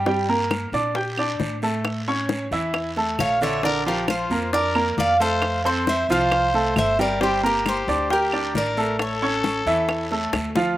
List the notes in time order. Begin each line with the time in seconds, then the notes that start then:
Already playing: G2
0.06 G3 G4 G5, high bongo, long guiro
0.29 A#3 A#4 A#5
0.51 high bongo, short guiro, claves
0.72 A#2 D4 D5 D6, high bongo, short guiro
0.95 G4 G5 G6, high bongo, long guiro
1.17 D4 D5 D6, high bongo, claves
1.40 A2, high bongo, low bongo, short guiro
1.62 A3 A4 A5, high bongo, short guiro
1.85 high bongo, long guiro, claves
2.08 C#4 C#5 C#6
2.29 high bongo, short guiro
2.51 E2 E3 E4 E5, high bongo, short guiro
2.74 high bongo, long guiro, claves
2.97 A3 A4 A5, high bongo
3.19 A#1 C#5 F5, high bongo, low bongo, short guiro, claves
3.41 D3 D4 C#5 D5 E5, high bongo, short guiro
3.63 D3 D4 A#4 D5, high bongo, long guiro
3.86 F3 F4 G4 A#4 F5
4.08 F4 C5, high bongo, short guiro, claves
4.30 F2 A#3 A#4 A#5, high bongo, short guiro
4.53 D4 A#4 D5 D6, high bongo, long guiro
4.75 A#3 A#4 A#5, high bongo, claves
4.97 F2 D5 F5, high bongo, low bongo, short guiro
5.20 A3 A4 C5 F5 A5, high bongo, short guiro
5.42 high bongo, long guiro, claves
5.65 C4 A4 C5 C6
5.87 C5 E5, high bongo, short guiro
6.09 C2 F3 F4 C5 F5, high bongo, short guiro
6.31 high bongo, long guiro, claves
6.54 A3 A4 A5, high bongo
6.76 G1 C5 E5, high bongo, low bongo, short guiro, claves
6.99 G3 G4 A#4 D5 G5, high bongo, short guiro
7.21 G3 G4 C5 G5, high bongo, long guiro
7.43 A#3 G4 A#4 A#5
7.66 G4 C5, high bongo, short guiro, claves
7.87 D2 D4 D5 D6, high bongo, short guiro
8.10 G4 A#4 G5 G6, high bongo, long guiro
8.32 D4 D5 D6, high bongo, claves
8.54 A1 A#4 D5, high bongo, low bongo, short guiro
8.77 A3 A4 A5, high bongo, short guiro
8.99 A4 C#5, high bongo, long guiro, claves
9.22 C#4 C#5 C#6
9.44 high bongo, short guiro
9.66 E2 E3 E4 E5, high bongo, short guiro
9.89 high bongo, long guiro, claves
10.11 A3 A4 A5, high bongo
10.33 D2, high bongo, short guiro, claves
10.55 F3 F4 F5, low bongo, short guiro